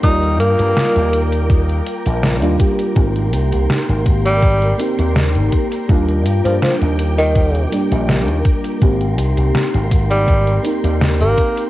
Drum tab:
HH |xxxxxxxxxxxxxxxx|xxxxxxxxxxxxxxxx|xxxxxxxxxxxxxxxx|xxxxxxxxxxxxxxxx|
SD |----o-------o---|----o-------o---|----o-------o---|----o-------o---|
BD |o-------o-----o-|o-----o-o-----o-|o-------o-----o-|o-----o-o-----o-|